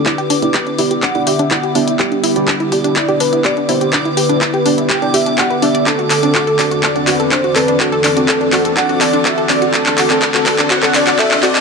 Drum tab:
HH |xxoxxxoxxxoxxxox|xxoxxxoxxxoxxxox|xxoxxxoxxxoxxxox|xxoxxxoxxxoxxxox|
CP |x---x---x---x---|x---x---x---x---|x---x---x---x---|x-x-x-x-x-x-x-x-|
BD |o---o---o---o---|o---o-o-o---o---|o---o---o---o---|o---o-o-o---o---|

HH |xxoxxxoxxxoxxxox|xxoxxxoxxxoxxxox|
CP |x-x-x-x-x-x-x-x-|xxxxxxxxxxxxxxxx|
BD |o---o---o---o---|o---o-o-o---o---|